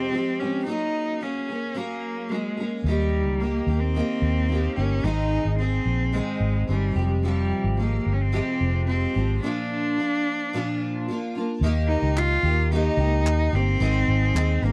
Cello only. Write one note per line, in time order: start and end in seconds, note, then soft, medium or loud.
0.00 0.41 C4 medium
0.40 0.66 C#4 medium
0.67 1.24 D#4 medium
1.23 1.79 C#4 medium
1.77 2.32 A#3 medium
2.31 2.72 G#3 medium
2.86 3.41 G3 medium
3.40 3.81 A#3 medium
3.80 4.76 C4 medium
4.76 5.05 C#4 medium
5.04 5.58 D#4 loud
5.59 6.15 C4 medium
6.13 6.68 G#3 medium
6.70 7.07 G3 medium
7.25 7.75 G3 medium
7.80 8.14 A#3 medium
8.13 8.23 C#4 medium
8.21 8.87 C4 medium
8.87 9.38 C4 medium
9.44 11.03 D4 medium
11.88 12.19 D#4 loud
12.18 12.72 F4 loud
12.74 13.57 D#4 loud
13.55 14.66 C4 loud
14.65 14.72 A#3 medium